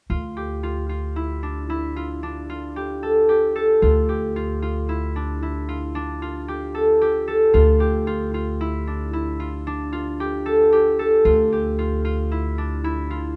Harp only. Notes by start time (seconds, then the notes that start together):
0.10 F4
0.37 G4
0.63 F4
0.89 F4
1.16 E4
1.43 D4
1.70 E4
1.96 F4
2.23 D4
2.50 F4
2.76 G4
3.03 A4
3.29 G4
3.56 A4
3.82 F4
4.09 G4
4.36 F4
4.62 F4
4.89 E4
5.16 D4
5.42 E4
5.69 F4
5.95 D4
6.22 F4
6.48 G4
6.75 A4
7.02 G4
7.28 A4
7.54 F4
7.80 G4
8.07 F4
8.34 F4
8.61 E4
8.87 D4
9.13 E4
9.40 F4
9.67 D4
9.93 F4
10.20 G4
10.46 A4
10.73 G4
10.99 A4
11.25 F4
11.53 G4
11.79 F4
12.05 F4
12.32 E4
12.58 D4
12.84 E4
13.10 F4